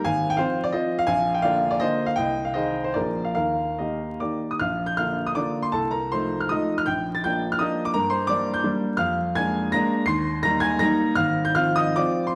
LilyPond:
<<
  \new Staff \with { instrumentName = "Grand piano" } { \time 3/4 \key ees \major \tempo 4 = 163 <f'' aes''>8. g''16 <c'' f''>8. d''16 <c'' ees''>8. f''16 | <f'' aes''>8. g''16 <d'' f''>8. d''16 <c'' ees''>8. f''16 | <ees'' g''>8. f''16 <c'' ees''>8. c''16 <bes' d''>8. f''16 | <bes' f''>4 <bes' ees''>4 <d'' d'''>8. ees'''16 |
\key bes \major <f'' f'''>8. g'''16 <f'' f'''>8. ees'''16 <d'' d'''>8. c'''16 | <a' a''>8 <bes' bes''>8 <c'' c'''>8. f'''16 <ees'' ees'''>8. f'''16 | <g'' g'''>8. a'''16 <g'' g'''>8. f'''16 <ees'' ees'''>8. d'''16 | <bes' bes''>8 <c'' c'''>8 <d'' d'''>8. g'''16 r4 |
\key ees \major <f'' f'''>4 <aes'' aes'''>4 <bes'' bes'''>4 | <c''' c''''>4 <bes'' bes'''>8 <aes'' aes'''>8 <bes'' bes'''>4 | <f'' f'''>8. g'''16 <f'' f'''>8 <ees'' ees'''>8 <d'' d'''>8. c'''16 | }
  \new Staff \with { instrumentName = "Grand piano" } { \time 3/4 \key ees \major aes,,4 <f c' f'>4 <f c' f'>4 | bes,,4 <d bes f'>4 <d bes f'>4 | c,4 <ees ees' aes'>4 <bes,, f bes aes'>4 | ees,4 <ees bes g'>4 <ees bes g'>4 |
\key bes \major bes,,4 <d bes f'>4 <d bes f'>4 | c,4 <f a ees'>4 <f a ees'>4 | bes,,4 <f bes d'>4 <f bes d'>4 | g,4 <g bes d'>4 <g bes d'>4 |
\key ees \major f,4 <aes bes d'>4 <aes bes d'>4 | ees,4 <g bes ees'>4 <g bes ees'>4 | aes,,4 <f c' f'>4 <f c' f'>4 | }
>>